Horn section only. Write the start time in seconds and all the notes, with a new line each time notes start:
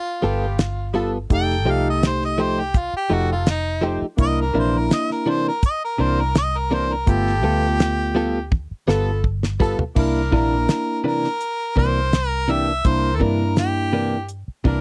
0.21 B3 F4 G4
0.93 B3 F4 A4
1.29 D#4 G4 A4
3.09 D#4 G4 A4
3.82 D#4 G4 C5
4.17 D4 E4 A#4
5.98 D4 E4 A#4
6.70 D4 E4 A#4
7.07 B3 F4 A4
8.88 B3 F4 A4
9.60 B3 F4 A4
9.95 D4 E4 A#4
11.75 D4 E4 A#4
12.49 D4 E4 G4
12.85 D4 E4 A#4
14.65 D4 E4 A#4